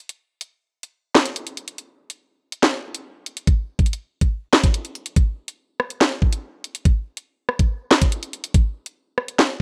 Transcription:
0.09 closed hi-hat medium
0.41 closed hi-hat medium
0.83 closed hi-hat medium
1.15 snare loud
1.15 clap medium
1.26 closed hi-hat medium
1.36 closed hi-hat medium
1.47 closed hi-hat medium
1.57 closed hi-hat medium
1.68 closed hi-hat medium
1.78 closed hi-hat medium
2.10 closed hi-hat medium
2.52 closed hi-hat medium
2.63 snare loud
2.63 clap medium
2.95 closed hi-hat medium
3.26 closed hi-hat medium
3.37 closed hi-hat medium
3.47 kick loud
3.47 closed hi-hat medium
3.79 kick medium
3.79 closed hi-hat soft
3.86 closed hi-hat medium
3.93 closed hi-hat medium
4.21 kick medium
4.21 closed hi-hat medium
4.53 snare loud
4.53 clap medium
4.64 kick medium
4.64 closed hi-hat medium
4.74 closed hi-hat medium
4.85 closed hi-hat medium
4.95 closed hi-hat medium
5.06 closed hi-hat medium
5.16 kick loud
5.16 closed hi-hat medium
5.48 closed hi-hat medium
5.80 cross-stick medium
5.90 closed hi-hat medium
6.01 snare loud
6.01 clap medium
6.22 kick medium
6.33 closed hi-hat medium
6.64 closed hi-hat medium
6.75 closed hi-hat medium
6.85 kick loud
6.85 closed hi-hat medium
7.17 closed hi-hat medium
7.49 cross-stick medium
7.59 kick medium
7.59 closed hi-hat medium
7.91 snare loud
7.91 clap medium
8.02 kick medium
8.02 closed hi-hat medium
8.12 closed hi-hat medium
8.23 closed hi-hat medium
8.33 closed hi-hat medium
8.44 closed hi-hat medium
8.54 kick loud
8.54 closed hi-hat medium
8.86 closed hi-hat medium
9.18 cross-stick medium
9.28 closed hi-hat medium
9.39 snare loud
9.39 clap medium

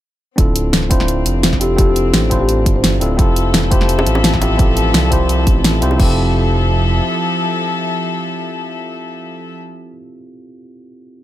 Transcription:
0.36 1.25 D1 loud
0.36 0.88 C4 medium
0.36 3.16 C4 medium
0.36 0.88 D4 medium
0.36 0.89 E4 medium
0.36 0.89 F4 medium
0.36 kick loud
0.36 closed hi-hat medium
0.40 0.90 A4 medium
0.56 closed hi-hat loud
0.73 snare loud
0.73 closed hi-hat medium
0.83 snare soft
0.90 0.97 C4 medium
0.90 0.97 D4 medium
0.90 0.97 E4 medium
0.90 0.98 F4 medium
0.90 0.98 C5 loud
0.90 kick loud
0.90 closed hi-hat loud
1.00 snare medium
1.08 closed hi-hat medium
1.26 2.12 F1 loud
1.26 closed hi-hat medium
1.43 snare loud
1.43 closed hi-hat medium
1.53 kick medium
1.53 snare soft
1.60 1.75 C4 medium
1.60 1.76 D4 medium
1.60 1.76 E4 medium
1.60 1.77 F4 medium
1.60 1.77 G4 medium
1.60 1.77 A4 medium
1.60 closed hi-hat loud
1.76 2.28 C4 medium
1.76 2.29 D4 medium
1.76 2.29 E4 medium
1.76 2.30 F4 medium
1.76 2.00 G4 medium
1.76 kick loud
1.76 closed hi-hat medium
1.81 2.30 A4 medium
1.96 closed hi-hat medium
2.14 2.68 A1 loud
2.14 snare loud
2.14 closed hi-hat medium
2.30 2.37 C4 loud
2.30 2.37 D4 medium
2.30 2.38 E4 medium
2.30 2.38 F4 medium
2.30 2.38 C5 loud
2.30 kick medium
2.30 closed hi-hat medium
2.41 2.61 G4 medium
2.49 closed hi-hat medium
2.66 3.00 G1 medium
2.66 kick loud
2.66 closed hi-hat medium
2.76 3.11 C5 medium
2.84 snare loud
2.84 closed hi-hat medium
3.00 3.17 D1 loud
3.00 3.15 C4 medium
3.00 3.17 D4 medium
3.00 3.16 E4 medium
3.00 3.17 F4 medium
3.00 3.17 A4 medium
3.00 closed hi-hat medium
3.17 4.05 F1 loud
3.17 5.97 F3 medium
3.17 3.68 C4 medium
3.17 3.69 E4 medium
3.17 3.69 F4 medium
3.17 3.70 G4 medium
3.17 5.97 A4 medium
3.17 5.97 E5 medium
3.17 kick loud
3.17 closed hi-hat medium
3.21 3.71 A4 medium
3.36 closed hi-hat medium
3.54 snare loud
3.54 closed hi-hat medium
3.63 snare soft
3.70 3.78 C4 loud
3.70 3.78 E4 medium
3.70 3.78 F4 medium
3.70 3.78 G4 medium
3.70 3.79 C5 loud
3.70 kick loud
3.70 closed hi-hat medium
3.81 snare medium
3.89 closed hi-hat medium
3.99 high bongo medium
4.07 4.93 A1 loud
4.07 closed hi-hat medium
4.15 high bongo medium
4.24 snare loud
4.24 closed hi-hat medium
4.33 kick medium
4.33 snare soft
4.41 4.56 C4 medium
4.41 4.57 E4 medium
4.41 4.57 F4 medium
4.41 4.58 G4 medium
4.41 4.58 A4 medium
4.41 closed hi-hat medium
4.41 high bongo medium
4.57 5.09 C4 medium
4.57 5.09 E4 medium
4.57 5.10 F4 medium
4.57 5.10 G4 medium
4.57 kick loud
4.57 closed hi-hat medium
4.61 5.11 A4 medium
4.77 closed hi-hat medium
4.94 5.49 C2 loud
4.94 snare loud
4.94 closed hi-hat medium
5.11 5.18 C4 medium
5.11 5.18 E4 medium
5.11 5.18 F4 medium
5.11 5.19 G4 medium
5.11 5.19 C5 loud
5.11 kick medium
5.11 closed hi-hat medium
5.29 closed hi-hat medium
5.47 5.81 A1 medium
5.47 kick loud
5.47 closed hi-hat medium
5.64 snare loud
5.64 closed hi-hat medium
5.81 5.98 C2 medium
5.81 5.95 C4 medium
5.81 5.97 E4 medium
5.81 5.98 F4 medium
5.81 5.98 G4 medium
5.81 5.98 C5 medium
5.81 closed hi-hat medium
5.91 high bongo medium
5.96 7.01 F1 loud
5.96 9.56 F3 medium
5.96 9.91 C4 medium
5.96 9.92 E4 medium
5.96 9.94 F4 medium
5.96 9.56 A4 medium
5.96 9.56 E5 medium
5.96 kick loud
5.96 crash medium
6.01 9.96 G4 medium
6.01 9.97 A4 medium

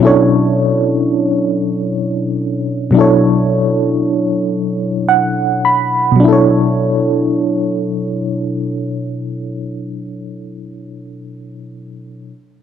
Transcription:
0.00 2.87 B2 medium
0.00 2.88 F#3 medium
0.00 6.23 C#4 medium
0.00 2.91 E4 medium
0.05 2.93 D4 medium
0.05 2.92 A4 medium
0.05 2.93 C#5 medium
2.91 6.10 B2 medium
2.91 6.15 F#3 medium
2.91 6.18 D4 medium
2.97 6.20 E4 medium
2.97 6.21 A4 medium
2.97 6.22 C#5 medium
5.09 5.60 F#5 medium
5.65 6.19 B5 medium
6.12 10.06 B2 medium
6.16 10.11 F#3 medium
6.20 10.15 D4 medium
6.24 10.19 E4 medium
6.29 10.23 A4 medium
6.33 10.27 C#5 medium

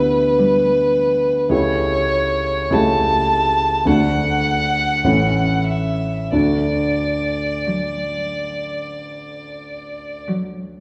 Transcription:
0.00 1.47 D2 soft
0.00 1.47 B3 soft
0.00 1.47 E4 soft
0.00 1.48 G4 soft
0.00 1.47 B4 medium
0.39 1.25 G3 soft
1.49 2.68 C#2 soft
1.49 2.68 A3 soft
1.49 2.69 E4 soft
1.49 2.68 G4 soft
1.49 2.74 C#5 medium
2.70 3.82 C#2 soft
2.70 3.83 A3 soft
2.70 3.61 A3 soft
2.70 3.83 E4 soft
2.70 3.83 G4 soft
2.70 3.88 A5 medium
3.85 5.01 D2 soft
3.85 5.01 A3 soft
3.85 4.77 A3 soft
3.85 5.01 D4 soft
3.85 5.01 F#4 soft
3.85 5.68 F#5 medium
5.04 6.29 A1 soft
5.04 6.29 A3 soft
5.04 6.03 A3 soft
5.04 6.30 C#4 soft
5.04 6.30 E4 soft
5.69 6.33 E5 soft
6.32 10.80 D2 soft
6.32 10.80 A3 soft
6.32 10.80 D4 soft
6.32 10.80 F#4 soft
6.32 10.25 D5 medium
7.67 8.68 F#3 soft
10.28 10.80 F#3 soft

